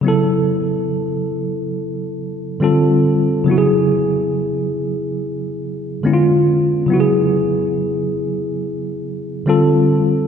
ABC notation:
X:1
M:4/4
L:1/8
Q:"Swing 16ths" 1/4=70
K:E
V:1 name="Tine electric piano"
[C,F,B,EA]6 [=D,=G,=C=FA]2 | [C,F,B,EFG]6 [=D,G,B,CE^E]2 | [C,F,B,EFG]6 [=D,=G,=C=FA]2 |]